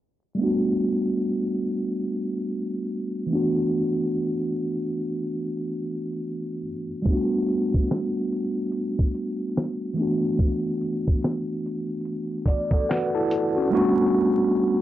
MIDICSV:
0, 0, Header, 1, 3, 480
1, 0, Start_track
1, 0, Tempo, 833333
1, 228, Time_signature, 4, 2, 24, 8
1, 8535, End_track
2, 0, Start_track
2, 0, Title_t, "Tine electric piano"
2, 0, Program_c, 0, 4
2, 201, Note_on_c, 0, 55, 70
2, 214, Note_on_c, 0, 57, 60
2, 225, Note_on_c, 0, 59, 59
2, 239, Note_on_c, 0, 62, 57
2, 250, Note_on_c, 0, 66, 68
2, 344, Control_c, 0, 64, 127
2, 1871, Note_off_c, 0, 55, 0
2, 1878, Note_off_c, 0, 57, 0
2, 1880, Note_on_c, 0, 52, 59
2, 1883, Note_off_c, 0, 59, 0
2, 1890, Note_off_c, 0, 62, 0
2, 1892, Note_on_c, 0, 57, 53
2, 1896, Note_off_c, 0, 66, 0
2, 1905, Note_on_c, 0, 59, 59
2, 1916, Control_c, 0, 64, 0
2, 1917, Note_on_c, 0, 62, 57
2, 1931, Note_on_c, 0, 66, 71
2, 2014, Control_c, 0, 64, 127
2, 3791, Note_off_c, 0, 52, 0
2, 3797, Note_off_c, 0, 57, 0
2, 3803, Note_off_c, 0, 59, 0
2, 3809, Note_off_c, 0, 62, 0
2, 3816, Note_off_c, 0, 66, 0
2, 4044, Note_on_c, 0, 55, 67
2, 4057, Note_on_c, 0, 57, 58
2, 4069, Note_on_c, 0, 59, 63
2, 4074, Control_c, 0, 64, 0
2, 4081, Note_on_c, 0, 62, 63
2, 4093, Note_on_c, 0, 66, 73
2, 4169, Control_c, 0, 64, 127
2, 5713, Note_off_c, 0, 55, 0
2, 5719, Note_off_c, 0, 57, 0
2, 5723, Note_on_c, 0, 52, 60
2, 5725, Note_off_c, 0, 59, 0
2, 5731, Note_off_c, 0, 62, 0
2, 5735, Note_on_c, 0, 57, 58
2, 5737, Note_off_c, 0, 66, 0
2, 5747, Note_on_c, 0, 59, 59
2, 5756, Control_c, 0, 64, 0
2, 5760, Note_on_c, 0, 62, 58
2, 5771, Note_on_c, 0, 66, 64
2, 5860, Control_c, 0, 64, 127
2, 7171, Note_off_c, 0, 62, 0
2, 7177, Note_off_c, 0, 66, 0
2, 7185, Note_on_c, 0, 74, 66
2, 7327, Note_off_c, 0, 74, 0
2, 7334, Note_on_c, 0, 74, 60
2, 7336, Note_on_c, 0, 69, 52
2, 7423, Note_off_c, 0, 74, 0
2, 7425, Note_off_c, 0, 69, 0
2, 7427, Note_on_c, 0, 71, 68
2, 7427, Note_on_c, 0, 78, 70
2, 7431, Note_on_c, 0, 66, 55
2, 7562, Note_off_c, 0, 78, 0
2, 7565, Note_off_c, 0, 71, 0
2, 7567, Note_off_c, 0, 66, 0
2, 7573, Note_on_c, 0, 69, 64
2, 7573, Note_on_c, 0, 81, 58
2, 7575, Note_on_c, 0, 64, 55
2, 7632, Note_off_c, 0, 52, 0
2, 7638, Note_off_c, 0, 57, 0
2, 7644, Note_off_c, 0, 59, 0
2, 7801, Note_off_c, 0, 69, 0
2, 7802, Note_off_c, 0, 64, 0
2, 7812, Note_on_c, 0, 66, 57
2, 7815, Note_on_c, 0, 61, 48
2, 7885, Note_off_c, 0, 81, 0
2, 7894, Note_on_c, 0, 55, 86
2, 7901, Note_on_c, 0, 57, 76
2, 7907, Note_on_c, 0, 59, 70
2, 7912, Note_off_c, 0, 66, 0
2, 7912, Note_on_c, 0, 62, 77
2, 7916, Control_c, 0, 64, 0
2, 7919, Note_on_c, 0, 66, 95
2, 8007, Control_c, 0, 64, 127
2, 8042, Note_off_c, 0, 61, 0
2, 8535, Note_off_c, 0, 55, 0
2, 8535, Note_off_c, 0, 57, 0
2, 8535, Note_off_c, 0, 59, 0
2, 8535, Note_off_c, 0, 62, 0
2, 8535, Note_off_c, 0, 66, 0
2, 8535, End_track
3, 0, Start_track
3, 0, Title_t, "Drums"
3, 4064, Note_on_c, 9, 36, 104
3, 4069, Note_on_c, 9, 42, 90
3, 4122, Note_off_c, 9, 36, 0
3, 4127, Note_off_c, 9, 42, 0
3, 4311, Note_on_c, 9, 42, 62
3, 4368, Note_off_c, 9, 42, 0
3, 4460, Note_on_c, 9, 36, 81
3, 4518, Note_off_c, 9, 36, 0
3, 4545, Note_on_c, 9, 42, 67
3, 4557, Note_on_c, 9, 38, 117
3, 4603, Note_off_c, 9, 42, 0
3, 4614, Note_off_c, 9, 38, 0
3, 4796, Note_on_c, 9, 42, 59
3, 4853, Note_off_c, 9, 42, 0
3, 5021, Note_on_c, 9, 42, 72
3, 5079, Note_off_c, 9, 42, 0
3, 5178, Note_on_c, 9, 36, 83
3, 5235, Note_off_c, 9, 36, 0
3, 5266, Note_on_c, 9, 42, 66
3, 5323, Note_off_c, 9, 42, 0
3, 5514, Note_on_c, 9, 38, 113
3, 5514, Note_on_c, 9, 42, 79
3, 5572, Note_off_c, 9, 38, 0
3, 5572, Note_off_c, 9, 42, 0
3, 5746, Note_on_c, 9, 42, 55
3, 5803, Note_off_c, 9, 42, 0
3, 5984, Note_on_c, 9, 36, 105
3, 5988, Note_on_c, 9, 42, 86
3, 6042, Note_off_c, 9, 36, 0
3, 6045, Note_off_c, 9, 42, 0
3, 6227, Note_on_c, 9, 42, 61
3, 6285, Note_off_c, 9, 42, 0
3, 6380, Note_on_c, 9, 36, 84
3, 6437, Note_off_c, 9, 36, 0
3, 6464, Note_on_c, 9, 42, 68
3, 6476, Note_on_c, 9, 38, 125
3, 6522, Note_off_c, 9, 42, 0
3, 6533, Note_off_c, 9, 38, 0
3, 6715, Note_on_c, 9, 42, 68
3, 6773, Note_off_c, 9, 42, 0
3, 6942, Note_on_c, 9, 42, 67
3, 6999, Note_off_c, 9, 42, 0
3, 7175, Note_on_c, 9, 36, 75
3, 7185, Note_on_c, 9, 42, 74
3, 7232, Note_off_c, 9, 36, 0
3, 7242, Note_off_c, 9, 42, 0
3, 7321, Note_on_c, 9, 36, 83
3, 7379, Note_off_c, 9, 36, 0
3, 7435, Note_on_c, 9, 38, 102
3, 7435, Note_on_c, 9, 42, 76
3, 7493, Note_off_c, 9, 38, 0
3, 7493, Note_off_c, 9, 42, 0
3, 7668, Note_on_c, 9, 42, 51
3, 7725, Note_off_c, 9, 42, 0
3, 8535, End_track
0, 0, End_of_file